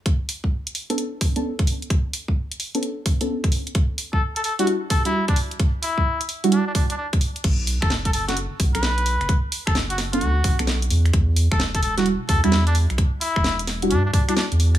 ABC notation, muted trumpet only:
X:1
M:4/4
L:1/16
Q:"Swing 16ths" 1/4=130
K:Bm
V:1 name="Muted trumpet"
z16 | z16 | z3 A z A A F z2 A E2 D z2 | z2 E3 z3 D D D D D z3 |
z3 A z A A F z3 B4- B- | B z2 A z F z F4 z4 z | z3 A z A A F z2 A E2 D z2 | z2 E3 z3 D D D D D z3 |]